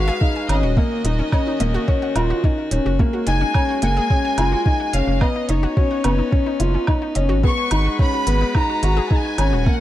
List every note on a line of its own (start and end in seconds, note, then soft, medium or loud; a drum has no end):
0.00 0.11 G#1 medium
0.00 0.75 G#3 medium
0.00 0.17 F#4 medium
0.00 5.17 F#4 medium
0.00 0.75 B4 medium
0.00 0.50 F5 loud
0.08 0.12 G#4 loud
0.21 0.45 D#4 medium
0.21 0.32 G#4 medium
0.21 kick loud
0.36 0.40 G#5 medium
0.49 0.64 G#1 medium
0.49 0.73 C#4 medium
0.49 0.56 D#4 medium
0.49 2.44 D#5 medium
0.49 closed hi-hat medium
0.49 low woodblock medium
0.63 0.80 D#1 loud
0.63 0.73 F#4 medium
0.76 2.97 D#3 medium
0.76 1.01 A#3 loud
0.76 2.97 C#4 medium
0.76 0.84 C#4 medium
0.76 kick loud
1.05 1.22 D#1 loud
1.05 1.29 D#4 medium
1.05 1.12 D#4 medium
1.05 closed hi-hat medium
1.19 1.26 C#4 medium
1.32 1.56 C#4 medium
1.32 1.43 C#5 medium
1.32 kick loud
1.32 low woodblock medium
1.47 1.54 D#4 medium
1.60 1.77 D#1 medium
1.60 1.84 A#3 medium
1.60 1.67 D#5 medium
1.60 closed hi-hat medium
1.74 1.78 F#4 loud
1.88 2.11 C#4 loud
1.88 1.98 F#4 medium
1.88 kick medium
2.02 2.06 F#5 medium
2.16 2.33 D#1 loud
2.16 2.39 F4 medium
2.16 2.23 A#4 medium
2.16 closed hi-hat medium
2.16 low woodblock medium
2.30 2.37 F#4 medium
2.44 2.48 C#4 medium
2.44 2.67 D#4 medium
2.44 kick loud
2.71 2.80 D#1 loud
2.71 2.95 C#4 medium
2.71 2.82 D#4 medium
2.71 closed hi-hat medium
2.86 3.02 F#1 medium
2.86 2.93 F#4 medium
2.99 5.20 G#3 medium
2.99 3.23 A#3 medium
2.99 5.20 A#3 medium
2.99 3.06 C#4 medium
2.99 kick loud
3.13 3.20 F#4 medium
3.27 3.44 F#1 loud
3.27 3.50 D#4 medium
3.27 3.79 G#5 loud
3.27 closed hi-hat medium
3.41 3.48 C#4 medium
3.54 3.78 C#4 medium
3.54 3.65 C#5 medium
3.54 kick loud
3.54 low woodblock medium
3.69 3.76 F#4 medium
3.82 4.00 F#1 medium
3.82 4.06 A#3 medium
3.82 3.90 F#5 medium
3.82 4.90 G#5 loud
3.82 closed hi-hat medium
3.97 4.01 G#4 loud
4.10 4.34 C#4 medium
4.10 4.21 G#4 medium
4.10 kick loud
4.25 4.29 G#5 medium
4.38 4.55 F#1 loud
4.38 4.45 C#4 medium
4.38 4.62 F4 medium
4.38 closed hi-hat medium
4.38 low woodblock medium
4.52 4.62 F#4 medium
4.66 4.73 C#4 medium
4.66 4.89 D#4 medium
4.66 kick loud
4.80 4.87 F#4 medium
4.93 5.02 F#1 medium
4.93 5.17 C#4 medium
4.93 5.21 F5 loud
4.93 closed hi-hat medium
5.07 5.24 F#1 loud
5.07 5.14 C#4 medium
5.21 5.45 B3 medium
5.21 7.42 B3 medium
5.21 7.41 C#4 medium
5.21 7.42 D#4 medium
5.21 5.32 C#5 medium
5.21 5.49 D#5 medium
5.21 kick loud
5.21 low woodblock medium
5.36 5.42 D#4 medium
5.49 5.66 F#1 medium
5.49 5.73 D#4 medium
5.49 6.60 C#5 medium
5.49 5.56 D#5 medium
5.49 closed hi-hat medium
5.63 5.67 F#4 loud
5.77 6.00 C#4 medium
5.77 5.87 F#4 medium
5.77 kick loud
5.91 5.95 F#5 medium
6.04 6.22 F#1 medium
6.04 6.28 B3 medium
6.04 6.12 C#4 medium
6.04 closed hi-hat medium
6.04 low woodblock medium
6.18 6.29 D#4 medium
6.32 6.56 C#4 medium
6.32 6.39 C#4 medium
6.32 kick loud
6.46 6.53 D#4 medium
6.60 6.77 F#1 loud
6.60 6.84 F4 medium
6.60 closed hi-hat medium
6.74 6.81 C#4 medium
6.87 7.11 D#4 medium
6.87 6.98 C#5 medium
6.87 kick loud
6.87 low woodblock medium
7.02 7.09 D#4 medium
7.15 7.31 F#1 medium
7.15 7.39 C#4 medium
7.15 7.23 D#5 medium
7.15 closed hi-hat medium
7.29 7.47 G#1 loud
7.29 7.34 F#4 loud
7.43 9.64 G#3 medium
7.43 7.67 B3 loud
7.43 9.80 F#4 medium
7.43 7.54 G#4 medium
7.43 9.64 B4 medium
7.43 7.96 C#6 loud
7.43 kick loud
7.57 7.62 G#5 medium
7.71 7.89 G#1 loud
7.71 7.95 D#4 medium
7.71 7.78 D#4 medium
7.71 closed hi-hat medium
7.71 low woodblock medium
7.86 7.96 F#4 medium
7.99 8.23 C#4 medium
7.99 8.06 D#4 medium
7.99 8.51 B5 loud
7.99 kick loud
8.13 8.20 F#4 medium
8.27 8.44 G#1 medium
8.27 8.51 B3 medium
8.27 closed hi-hat medium
8.41 8.48 D#4 medium
8.55 8.79 D#4 medium
8.55 8.65 D#5 medium
8.55 9.11 A#5 loud
8.55 kick loud
8.55 low woodblock medium
8.69 8.76 F#4 medium
8.83 9.00 G#1 loud
8.83 9.07 F#4 medium
8.83 8.90 F#5 medium
8.83 closed hi-hat medium
8.97 9.01 G#4 loud
9.11 9.34 D#4 medium
9.11 9.21 G#4 medium
9.11 9.66 G#5 loud
9.11 kick loud
9.25 9.29 G#5 medium
9.38 9.54 G#1 loud
9.38 9.62 C#4 medium
9.38 9.45 D#4 medium
9.38 closed hi-hat medium
9.38 low woodblock medium
9.52 9.69 D#1 loud
9.52 9.63 F#4 medium
9.66 9.80 D#3 medium
9.66 9.80 A#3 medium
9.66 9.80 C#4 medium
9.66 9.73 C#4 medium
9.66 9.80 F#5 loud
9.66 kick loud